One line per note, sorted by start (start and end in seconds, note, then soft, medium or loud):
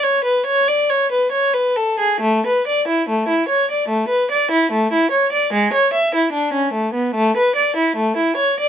0.03 0.25 C#5 soft
0.24 0.46 B4 soft
0.46 0.67 C#5 medium
0.68 0.89 D5 medium
0.90 1.11 C#5 soft
1.12 1.32 B4 soft
1.32 1.53 C#5 medium
1.54 1.76 B4 medium
1.76 1.99 A4 medium
1.99 2.21 G#4 medium
2.21 2.42 A3 medium
2.47 2.66 B4 medium
2.67 2.87 D5 soft
2.88 3.07 E4 soft
3.09 3.28 A3 soft
3.28 3.48 E4 soft
3.48 3.68 C#5 soft
3.71 3.90 D5 soft
3.88 4.08 A3 soft
4.08 4.29 B4 medium
4.31 4.50 D5 soft
4.51 4.70 E4 soft
4.71 4.91 A3 soft
4.92 5.11 E4 soft
5.11 5.31 C#5 soft
5.32 5.51 D5 medium
5.53 5.72 G#3 medium
5.73 5.92 C#5 medium
5.93 6.13 E5 medium
6.15 6.34 E4 soft
6.32 6.53 D4 medium
6.53 6.73 C#4 soft
6.73 6.94 A3 soft
6.94 7.14 B3 soft
7.14 7.35 A3 medium
7.37 7.56 B4 soft
7.56 7.76 D5 soft
7.76 7.97 E4 soft
7.96 8.17 A3 soft
8.16 8.38 E4 soft
8.36 8.59 C#5 soft
8.60 8.69 D5 medium